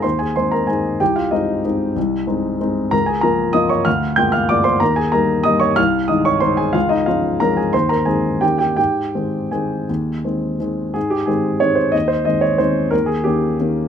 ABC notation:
X:1
M:3/4
L:1/8
Q:1/4=183
K:Ab
V:1 name="Grand piano"
[cc'] [Aa] [cc'] [Bb] [Aa]2 | [Gg] [Ff] [Ee]4- | [Ee]6 | [Bb] [Aa] [Bb]2 [ee'] [dd'] |
[ff']2 [gg'] [ff'] [=d=d'] [cc'] | [Bb] [Aa] [Bb]2 [ee'] [dd'] | [ff']2 [ee'] [dd'] [cc'] [Aa] | [Ff] [Ee] [Ff]2 [Bb] [Aa] |
[cc'] [Bb] [Aa]2 [Gg] [Gg] | [Gg]4 [Aa]2- | [Aa]4 z2 | A G A2 d c |
e c e d c2 | B A G4 |]
V:2 name="Grand piano" clef=bass
E,,2 [A,CE]2 [A,CE]2 | C,,2 [A,C]2 [A,CE]2 | C,,2 [A,CE]2 [A,CE]2 | D,,2 [F,B,F]2 [F,B,F]2 |
=D,,2 [A,B,F]2 [A,B,F]2 | E,,2 [G,B,E]2 [G,B,E]2 | C,,2 [E,A,E]2 [E,A,E]2 | D,,2 [F,A,D]2 [F,A,D]2 |
E,,2 [E,A,C]2 [E,,E,B,D]2 | A,,2 [E,A,C]2 [E,A,C]2 | E,,2 [E,A,C]2 [E,A,C]2 | A,,2 [E,A,C]2 [E,A,C]2 |
E,,2 [E,A,C]2 [E,A,C]2 | E,,2 [E,B,D]2 [E,B,D]2 |]